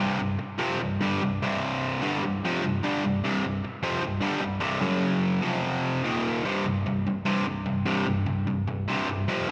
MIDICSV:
0, 0, Header, 1, 3, 480
1, 0, Start_track
1, 0, Tempo, 403769
1, 7, Time_signature, 4, 2, 24, 8
1, 11308, End_track
2, 0, Start_track
2, 0, Title_t, "Overdriven electric guitar"
2, 0, Program_c, 0, 29
2, 0, Note_on_c, 0, 36, 93
2, 0, Note_on_c, 0, 43, 107
2, 0, Note_on_c, 0, 48, 106
2, 212, Note_off_c, 0, 43, 0
2, 216, Note_off_c, 0, 36, 0
2, 227, Note_on_c, 0, 43, 77
2, 231, Note_off_c, 0, 48, 0
2, 231, Note_on_c, 0, 36, 64
2, 429, Note_off_c, 0, 43, 0
2, 431, Note_off_c, 0, 36, 0
2, 695, Note_on_c, 0, 41, 87
2, 706, Note_on_c, 0, 48, 104
2, 706, Note_on_c, 0, 53, 103
2, 944, Note_off_c, 0, 41, 0
2, 949, Note_off_c, 0, 48, 0
2, 949, Note_off_c, 0, 53, 0
2, 956, Note_on_c, 0, 36, 74
2, 962, Note_on_c, 0, 43, 82
2, 1153, Note_off_c, 0, 36, 0
2, 1156, Note_off_c, 0, 43, 0
2, 1197, Note_on_c, 0, 43, 100
2, 1200, Note_on_c, 0, 50, 88
2, 1217, Note_on_c, 0, 55, 104
2, 1434, Note_off_c, 0, 43, 0
2, 1436, Note_off_c, 0, 50, 0
2, 1445, Note_off_c, 0, 55, 0
2, 1451, Note_on_c, 0, 36, 66
2, 1458, Note_on_c, 0, 43, 71
2, 1640, Note_off_c, 0, 36, 0
2, 1644, Note_off_c, 0, 43, 0
2, 1692, Note_on_c, 0, 36, 92
2, 1696, Note_on_c, 0, 43, 99
2, 1705, Note_on_c, 0, 48, 112
2, 2383, Note_off_c, 0, 43, 0
2, 2393, Note_off_c, 0, 36, 0
2, 2398, Note_on_c, 0, 43, 92
2, 2402, Note_on_c, 0, 50, 106
2, 2407, Note_off_c, 0, 48, 0
2, 2416, Note_on_c, 0, 55, 97
2, 2634, Note_off_c, 0, 43, 0
2, 2636, Note_off_c, 0, 50, 0
2, 2643, Note_off_c, 0, 55, 0
2, 2656, Note_on_c, 0, 36, 73
2, 2666, Note_on_c, 0, 43, 76
2, 2842, Note_off_c, 0, 36, 0
2, 2847, Note_off_c, 0, 43, 0
2, 2907, Note_on_c, 0, 41, 102
2, 2911, Note_on_c, 0, 48, 111
2, 2912, Note_on_c, 0, 53, 115
2, 3127, Note_off_c, 0, 41, 0
2, 3130, Note_off_c, 0, 48, 0
2, 3130, Note_off_c, 0, 53, 0
2, 3131, Note_on_c, 0, 36, 64
2, 3136, Note_on_c, 0, 43, 71
2, 3319, Note_off_c, 0, 36, 0
2, 3322, Note_off_c, 0, 43, 0
2, 3370, Note_on_c, 0, 43, 102
2, 3377, Note_on_c, 0, 50, 96
2, 3380, Note_on_c, 0, 55, 109
2, 3599, Note_off_c, 0, 43, 0
2, 3603, Note_off_c, 0, 50, 0
2, 3604, Note_off_c, 0, 55, 0
2, 3623, Note_on_c, 0, 36, 68
2, 3628, Note_on_c, 0, 43, 72
2, 3805, Note_off_c, 0, 36, 0
2, 3807, Note_off_c, 0, 43, 0
2, 3850, Note_on_c, 0, 36, 107
2, 3863, Note_on_c, 0, 43, 113
2, 3863, Note_on_c, 0, 48, 117
2, 4071, Note_off_c, 0, 36, 0
2, 4081, Note_off_c, 0, 43, 0
2, 4085, Note_off_c, 0, 48, 0
2, 4085, Note_on_c, 0, 36, 67
2, 4095, Note_on_c, 0, 43, 73
2, 4276, Note_off_c, 0, 36, 0
2, 4280, Note_off_c, 0, 43, 0
2, 4550, Note_on_c, 0, 41, 91
2, 4552, Note_on_c, 0, 48, 98
2, 4561, Note_on_c, 0, 53, 105
2, 4778, Note_off_c, 0, 41, 0
2, 4778, Note_off_c, 0, 48, 0
2, 4783, Note_on_c, 0, 36, 72
2, 4783, Note_on_c, 0, 43, 79
2, 4793, Note_off_c, 0, 53, 0
2, 4983, Note_off_c, 0, 43, 0
2, 4984, Note_off_c, 0, 36, 0
2, 4999, Note_on_c, 0, 43, 98
2, 5015, Note_on_c, 0, 55, 114
2, 5016, Note_on_c, 0, 50, 100
2, 5236, Note_off_c, 0, 43, 0
2, 5240, Note_on_c, 0, 36, 75
2, 5246, Note_off_c, 0, 50, 0
2, 5251, Note_on_c, 0, 43, 76
2, 5260, Note_off_c, 0, 55, 0
2, 5452, Note_off_c, 0, 36, 0
2, 5457, Note_off_c, 0, 43, 0
2, 5470, Note_on_c, 0, 36, 99
2, 5471, Note_on_c, 0, 43, 101
2, 5479, Note_on_c, 0, 48, 114
2, 5711, Note_off_c, 0, 36, 0
2, 5716, Note_off_c, 0, 43, 0
2, 5716, Note_on_c, 0, 42, 104
2, 5718, Note_off_c, 0, 48, 0
2, 5721, Note_on_c, 0, 49, 108
2, 5723, Note_on_c, 0, 54, 115
2, 6433, Note_off_c, 0, 42, 0
2, 6438, Note_on_c, 0, 41, 91
2, 6444, Note_off_c, 0, 54, 0
2, 6445, Note_off_c, 0, 49, 0
2, 6448, Note_on_c, 0, 53, 102
2, 6450, Note_on_c, 0, 48, 107
2, 7171, Note_off_c, 0, 41, 0
2, 7176, Note_off_c, 0, 53, 0
2, 7177, Note_off_c, 0, 48, 0
2, 7179, Note_on_c, 0, 39, 98
2, 7185, Note_on_c, 0, 46, 106
2, 7192, Note_on_c, 0, 51, 107
2, 7650, Note_off_c, 0, 39, 0
2, 7655, Note_on_c, 0, 36, 91
2, 7661, Note_off_c, 0, 46, 0
2, 7666, Note_on_c, 0, 43, 107
2, 7668, Note_off_c, 0, 51, 0
2, 7676, Note_on_c, 0, 48, 105
2, 7888, Note_off_c, 0, 36, 0
2, 7898, Note_off_c, 0, 43, 0
2, 7902, Note_on_c, 0, 36, 75
2, 7903, Note_off_c, 0, 48, 0
2, 7911, Note_on_c, 0, 43, 78
2, 8127, Note_off_c, 0, 36, 0
2, 8131, Note_off_c, 0, 43, 0
2, 8158, Note_on_c, 0, 36, 75
2, 8165, Note_on_c, 0, 43, 87
2, 8375, Note_off_c, 0, 36, 0
2, 8379, Note_off_c, 0, 43, 0
2, 8405, Note_on_c, 0, 36, 70
2, 8406, Note_on_c, 0, 43, 84
2, 8614, Note_off_c, 0, 36, 0
2, 8614, Note_off_c, 0, 43, 0
2, 8628, Note_on_c, 0, 36, 85
2, 8629, Note_on_c, 0, 43, 105
2, 8631, Note_on_c, 0, 48, 108
2, 8849, Note_off_c, 0, 36, 0
2, 8853, Note_off_c, 0, 43, 0
2, 8861, Note_off_c, 0, 48, 0
2, 8864, Note_on_c, 0, 36, 76
2, 8867, Note_on_c, 0, 43, 77
2, 9089, Note_off_c, 0, 36, 0
2, 9090, Note_off_c, 0, 43, 0
2, 9105, Note_on_c, 0, 36, 80
2, 9106, Note_on_c, 0, 43, 87
2, 9326, Note_off_c, 0, 36, 0
2, 9326, Note_off_c, 0, 43, 0
2, 9340, Note_on_c, 0, 36, 90
2, 9340, Note_on_c, 0, 43, 103
2, 9346, Note_on_c, 0, 48, 97
2, 9563, Note_off_c, 0, 36, 0
2, 9567, Note_off_c, 0, 43, 0
2, 9577, Note_on_c, 0, 36, 80
2, 9580, Note_off_c, 0, 48, 0
2, 9581, Note_on_c, 0, 43, 91
2, 9807, Note_off_c, 0, 36, 0
2, 9808, Note_off_c, 0, 43, 0
2, 9825, Note_on_c, 0, 43, 79
2, 9828, Note_on_c, 0, 36, 71
2, 10051, Note_off_c, 0, 43, 0
2, 10052, Note_off_c, 0, 36, 0
2, 10069, Note_on_c, 0, 36, 81
2, 10071, Note_on_c, 0, 43, 88
2, 10293, Note_off_c, 0, 36, 0
2, 10294, Note_off_c, 0, 43, 0
2, 10312, Note_on_c, 0, 36, 74
2, 10314, Note_on_c, 0, 43, 87
2, 10535, Note_off_c, 0, 36, 0
2, 10536, Note_off_c, 0, 43, 0
2, 10553, Note_on_c, 0, 36, 88
2, 10560, Note_on_c, 0, 43, 96
2, 10568, Note_on_c, 0, 48, 109
2, 10773, Note_off_c, 0, 36, 0
2, 10777, Note_off_c, 0, 43, 0
2, 10787, Note_on_c, 0, 36, 74
2, 10792, Note_on_c, 0, 43, 86
2, 10793, Note_off_c, 0, 48, 0
2, 11014, Note_off_c, 0, 36, 0
2, 11016, Note_off_c, 0, 43, 0
2, 11032, Note_on_c, 0, 41, 95
2, 11038, Note_on_c, 0, 48, 99
2, 11046, Note_on_c, 0, 53, 108
2, 11266, Note_off_c, 0, 41, 0
2, 11269, Note_off_c, 0, 48, 0
2, 11273, Note_off_c, 0, 53, 0
2, 11308, End_track
3, 0, Start_track
3, 0, Title_t, "Muted overdriven electric guitar strokes"
3, 465, Note_on_c, 9, 29, 62
3, 584, Note_off_c, 9, 29, 0
3, 4331, Note_on_c, 9, 29, 60
3, 4450, Note_off_c, 9, 29, 0
3, 11308, End_track
0, 0, End_of_file